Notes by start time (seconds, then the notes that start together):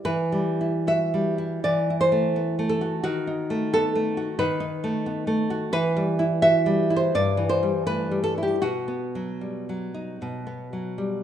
0.05 E3 B4
0.32 G3
0.61 E4
0.87 F#4 E5
1.14 G3
1.38 E4
1.64 E3 D5
1.90 E4
2.01 C5
2.12 A3
2.36 B3
2.59 A3
2.69 A4
2.81 F#4
3.04 D#3 F#4
3.27 D#4
3.50 A3
3.74 B3 A4
3.95 A3
4.17 F#4
4.39 D#3 B4
4.60 D#4
4.84 A3
5.06 B3
5.27 A3
5.50 F#4
5.73 E3 B4
5.96 G3
6.19 E4
6.42 F#4 E5
6.66 G3
6.90 E4
6.96 C5
7.15 G2 D5
7.37 E3
7.49 C5
7.63 G3
7.87 A3 B4
8.11 G3
8.24 A4
8.38 E4
8.43 G4
8.62 B2 F#4
8.88 B3
9.15 F#3
9.41 G3
9.69 F#3
9.94 D#4
10.22 B2
10.47 B3
10.73 F#3
10.98 G3